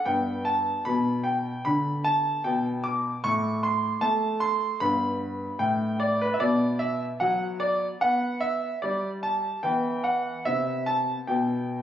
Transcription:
0.05 0.69 G2 soft
0.05 3.21 B3 soft
0.05 0.45 G5 medium
0.45 0.84 A5 medium
0.85 1.50 B2 soft
0.85 1.25 B5 medium
1.24 1.64 G5 medium
1.65 2.29 D3 soft
1.65 2.05 B5 medium
2.04 2.45 A5 medium
2.44 3.08 B2 soft
2.44 2.68 G5 medium
2.84 3.20 D6 medium
3.24 3.88 A2 medium
3.24 4.00 A3 soft
3.24 3.64 C#6 medium
3.63 4.03 C6 medium
4.01 4.65 A3 medium
4.01 4.42 A5 medium
4.40 4.77 C6 medium
4.80 5.45 G2 soft
4.80 6.37 B3 soft
4.80 5.60 B5 medium
5.59 6.24 A2 soft
5.59 5.97 G5 medium
6.00 6.21 D5 medium
6.21 6.35 B4 medium
6.34 6.41 E5 medium
6.40 7.04 B2 soft
6.40 8.00 B3 soft
6.40 6.81 D5 medium
6.79 7.04 E5 medium
7.20 7.85 F#3 medium
7.20 7.44 F#5 medium
7.60 7.85 D5 medium
8.01 8.67 B3 medium
8.01 8.38 F#5 medium
8.40 8.78 E5 medium
8.82 9.48 G3 medium
8.82 9.07 D5 medium
9.23 9.64 A5 medium
9.63 10.29 E3 medium
9.63 11.82 B3 soft
9.63 10.04 G5 medium
10.04 10.41 F#5 medium
10.45 11.11 C3 soft
10.45 10.86 E5 medium
10.86 11.11 A5 medium
11.27 11.82 B2 soft
11.27 11.82 G5 medium

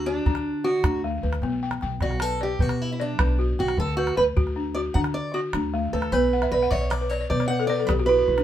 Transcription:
0.00 0.18 D2 medium
0.00 0.25 D4 medium
0.06 0.67 D4 medium
0.06 0.45 F#4 medium
0.26 0.77 D3 medium
0.26 0.83 D4 medium
0.26 calabash thump medium
0.35 calabash click medium
0.64 1.01 F#4 medium
0.64 1.04 F#4 medium
0.84 1.18 D2 loud
0.84 1.43 D4 medium
0.84 calabash thump medium
0.84 calabash click medium
1.04 1.43 A3 medium
1.23 1.40 D2 medium
1.23 1.63 B4 medium
1.33 calabash click medium
1.42 1.77 B1 medium
1.42 1.82 B3 medium
1.42 calabash thump medium
1.63 1.81 G5 medium
1.71 calabash click medium
1.81 2.00 B1 medium
1.81 2.41 G5 medium
1.81 calabash click soft
2.01 2.53 B1 medium
2.01 2.22 F#4 medium
2.01 2.40 D5 medium
2.01 calabash thump medium
2.01 calabash click soft
2.11 calabash click soft
2.20 2.42 A4 medium
2.20 2.59 B4 medium
2.20 calabash click medium
2.41 2.62 G4 medium
2.41 2.80 D5 medium
2.59 3.11 B2 medium
2.59 2.82 F#4 medium
2.59 3.18 B4 medium
2.59 calabash thump medium
2.69 calabash click medium
2.82 2.91 E4 medium
2.92 3.00 E4 medium
3.00 3.37 D4 medium
3.00 3.39 D5 medium
3.19 3.53 B1 loud
3.19 3.78 B4 medium
3.19 calabash thump medium
3.19 calabash click medium
3.39 3.78 F#4 medium
3.59 3.76 B1 medium
3.59 3.79 F#4 medium
3.59 3.98 G5 medium
3.68 calabash click medium
3.77 4.12 D2 medium
3.77 4.17 D3 medium
3.77 3.96 A4 loud
3.77 calabash thump medium
3.97 4.17 F#4 medium
3.97 4.16 B4 medium
4.07 calabash click medium
4.17 4.34 D2 medium
4.17 4.76 B4 medium
4.17 4.23 B4 loud
4.17 calabash click soft
4.37 4.87 D2 medium
4.37 4.74 F#4 medium
4.37 calabash thump medium
4.37 calabash click soft
4.47 calabash click soft
4.56 4.94 D4 medium
4.75 5.15 F#4 medium
4.75 4.80 D5 medium
4.94 5.46 D3 loud
4.94 5.53 D4 medium
4.94 5.00 F#5 loud
4.94 calabash thump medium
5.04 calabash click soft
5.14 5.35 D5 medium
5.34 5.39 F#4 medium
5.34 5.74 F#4 medium
5.53 5.88 D2 medium
5.53 6.13 D4 medium
5.53 calabash thump medium
5.53 calabash click medium
5.74 6.13 A3 medium
5.93 6.10 D2 medium
5.93 6.12 A4 medium
5.93 6.32 B4 medium
6.02 calabash click soft
6.12 6.46 B1 medium
6.12 6.52 B3 medium
6.12 6.50 B4 medium
6.12 calabash thump medium
6.33 6.51 F#5 medium
6.42 6.60 E5 medium
6.42 calabash click soft
6.51 6.68 B1 medium
6.51 6.71 B4 medium
6.51 6.70 D5 medium
6.62 6.80 F#5 medium
6.62 calabash click soft
6.71 7.22 B1 medium
6.71 6.90 C#5 loud
6.71 6.80 D5 medium
6.71 6.90 E5 medium
6.71 calabash thump medium
6.81 6.99 D5 medium
6.90 7.09 C#5 medium
6.90 7.09 D5 medium
6.90 calabash click medium
7.01 7.19 B4 medium
7.09 7.29 C#5 medium
7.09 7.19 D5 medium
7.09 calabash click soft
7.21 7.38 D5 medium
7.30 7.81 B2 medium
7.30 7.48 B4 medium
7.30 7.47 D5 medium
7.30 calabash thump medium
7.40 7.58 C#5 medium
7.40 calabash click soft
7.48 7.68 B4 medium
7.48 7.67 F#5 loud
7.60 7.78 A4 medium
7.67 7.87 B4 medium
7.67 7.88 D5 loud
7.67 8.08 D5 medium
7.79 7.97 A4 medium
7.79 calabash click soft
7.87 8.22 B1 medium
7.87 8.07 G4 medium
7.87 7.92 B4 medium
7.87 calabash thump medium
7.87 calabash click medium
7.99 8.08 F#4 medium
7.99 calabash click soft
8.06 8.27 E4 medium
8.06 8.17 F#4 medium
8.06 8.44 B4 medium
8.19 8.36 F#4 medium
8.28 8.44 B1 medium
8.28 8.44 E4 medium
8.38 8.44 D4 medium
8.38 calabash click soft

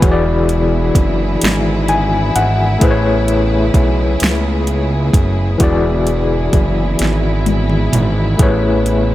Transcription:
0.00 0.92 E1 loud
0.00 2.79 D3 medium
0.00 2.76 E3 medium
0.00 2.78 E3 medium
0.00 2.77 B3 medium
0.00 2.77 E4 medium
0.00 5.56 E4 medium
0.00 2.77 F#4 medium
0.00 9.15 G#4 medium
0.00 2.78 G#4 medium
0.00 0.23 B5 medium
0.00 kick loud
0.00 closed hi-hat medium
0.05 0.10 C#5 medium
0.12 2.82 D5 medium
0.49 closed hi-hat medium
0.95 1.38 F#1 medium
0.95 kick medium
0.95 closed hi-hat medium
1.42 2.31 G#1 loud
1.42 snare loud
1.42 closed hi-hat medium
1.88 2.32 G#5 medium
1.88 closed hi-hat medium
2.36 2.78 G#1 medium
2.36 2.79 F#5 medium
2.36 closed hi-hat medium
2.79 3.71 A1 loud
2.79 5.58 C#3 medium
2.79 5.55 A3 medium
2.79 5.58 A3 medium
2.79 5.58 B3 medium
2.79 5.56 E4 medium
2.79 5.56 G#4 medium
2.79 kick loud
2.79 closed hi-hat medium
2.83 5.57 B4 medium
2.83 2.89 C5 medium
2.91 5.61 C#5 medium
3.28 closed hi-hat medium
3.74 4.17 B1 medium
3.74 kick medium
3.74 closed hi-hat medium
4.20 5.11 C#2 loud
4.20 snare loud
4.20 closed hi-hat medium
4.67 closed hi-hat medium
5.14 5.57 F#1 medium
5.14 kick medium
5.14 closed hi-hat medium
5.58 6.50 E1 loud
5.58 8.37 D3 medium
5.58 8.34 E3 medium
5.58 8.37 E3 medium
5.58 9.15 B3 medium
5.58 8.35 E4 medium
5.58 9.15 E4 medium
5.58 8.36 F#4 medium
5.58 kick loud
5.58 closed hi-hat medium
5.62 8.36 G#4 medium
5.62 8.37 D5 medium
6.07 closed hi-hat medium
6.53 6.96 F#1 medium
6.53 kick medium
6.53 closed hi-hat medium
6.99 7.89 G#1 loud
6.99 snare medium
6.99 closed hi-hat medium
7.46 closed hi-hat medium
7.46 high tom medium
7.70 mid tom medium
7.93 8.36 G#1 loud
7.93 closed hi-hat medium
7.93 mid tom loud
8.37 9.15 A1 loud
8.37 9.15 C#3 medium
8.37 9.15 A3 medium
8.37 9.15 E4 medium
8.37 9.15 G#4 medium
8.37 kick loud
8.37 closed hi-hat medium
8.41 9.15 B4 medium
8.41 9.15 C#5 medium
8.86 closed hi-hat medium

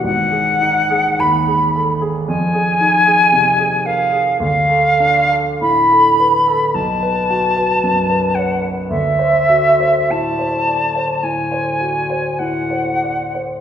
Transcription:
0.04 2.24 G#1 medium
0.04 1.21 F#5 loud
0.31 0.79 G#4 soft
0.61 1.08 D#4 soft
0.90 1.37 G#4 medium
1.19 1.64 D#2 medium
1.19 2.02 B5 medium
1.47 1.91 G#4 soft
1.76 2.02 A4 soft
2.01 2.28 G#4 medium
2.27 4.37 F2 medium
2.27 3.87 G#5 loud
2.54 2.96 G#4 medium
2.80 3.22 D#4 soft
3.06 3.49 G#4 medium
3.32 3.75 C3 medium
3.59 4.02 G#4 medium
3.85 4.13 A#4 soft
3.85 4.39 F5 medium
4.12 4.40 G#4 medium
4.40 6.70 D2 medium
4.40 5.35 F5 loud
4.69 5.19 A4 medium
5.00 5.50 D4 medium
5.31 5.79 A4 medium
5.61 6.08 A2 medium
5.61 6.76 B5 medium
5.92 6.36 A4 soft
6.20 6.47 B4 soft
6.48 6.75 A4 medium
6.74 8.86 B1 medium
6.74 8.36 A5 medium
7.03 7.46 B4 medium
7.30 7.72 F#4 medium
7.57 7.99 B4 medium
7.83 8.25 F#2 soft
8.10 8.52 B4 medium
8.34 8.63 C#5 soft
8.34 8.70 F#5 medium
8.63 8.90 B4 soft
8.90 11.19 D2 medium
8.90 10.12 E5 medium
9.19 9.68 C5 medium
9.49 9.99 F#4 soft
9.80 10.28 C5 medium
10.10 10.57 A2 soft
10.10 11.24 A5 medium
10.39 10.84 C5 soft
10.67 10.95 D5 soft
10.95 11.40 C5 soft
11.23 11.68 A2 soft
11.23 12.40 G#5 medium
11.51 11.98 C5 soft
11.80 12.27 F#4 soft
12.10 12.58 C5 soft
12.39 12.89 A2 soft
12.39 13.44 F#5 medium
12.70 13.21 C5 soft
13.02 13.34 D5 soft
13.34 13.61 C5 soft

